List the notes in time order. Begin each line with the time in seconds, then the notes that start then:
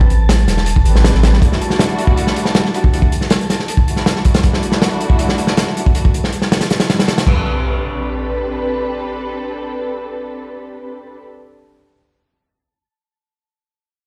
Already playing: A1 A5
0.01 kick
0.10 closed hi-hat
0.29 snare, closed hi-hat
0.38 closed hi-hat
0.47 E1, snare, closed hi-hat
0.57 snare
0.66 closed hi-hat
0.76 kick
0.84 A1 C4 D4 G4 A4 B4, closed hi-hat
0.95 snare
1.04 snare, closed hi-hat
1.13 A1, snare
1.23 snare, closed hi-hat
1.33 snare
1.42 G3 A3 D4 E4 F#4, kick, closed hi-hat
1.52 snare
1.61 closed hi-hat
1.70 snare
1.79 snare, closed hi-hat
1.98 closed hi-hat
2.07 kick
2.17 closed hi-hat
2.27 snare
2.36 closed hi-hat
2.45 snare
2.55 snare, closed hi-hat
2.65 snare
2.74 G3 A3 D4 E4 F#4, closed hi-hat
2.84 kick
2.93 G3 A3 D4 E4 F#4, closed hi-hat
3.02 kick
3.12 closed hi-hat
3.21 snare
3.30 snare, closed hi-hat
3.41 closed hi-hat
3.50 snare, closed hi-hat
3.60 snare
3.68 closed hi-hat
3.77 kick
3.87 G3 A3 D4 E4 F#4, closed hi-hat
3.96 snare
4.06 snare, closed hi-hat
4.16 snare
4.25 kick, closed hi-hat
4.34 snare, closed hi-hat
4.43 G3 A3 D4 E4 F#4, kick, closed hi-hat
4.53 snare
4.63 closed hi-hat
4.72 snare
4.82 snare, closed hi-hat
4.91 closed hi-hat
5.01 closed hi-hat
5.10 kick
5.19 closed hi-hat
5.29 snare
5.38 closed hi-hat
5.47 snare
5.57 snare, closed hi-hat
5.67 snare
5.76 G3 A3 D4 E4 F#4, closed hi-hat
5.86 kick
5.95 G3 A3 D4 E4 F#4, closed hi-hat
6.05 kick
6.14 closed hi-hat
6.24 snare
6.32 closed hi-hat
6.42 snare
6.52 snare, closed hi-hat
6.61 snare, closed hi-hat
6.70 snare, closed hi-hat
6.80 snare, closed hi-hat
6.89 G3 A3 D4 E4 F#4, snare, closed hi-hat
6.99 snare, closed hi-hat
7.08 snare, closed hi-hat
7.18 snare, closed hi-hat
7.27 C4 D4 G4 A4 B4, kick, crash, impact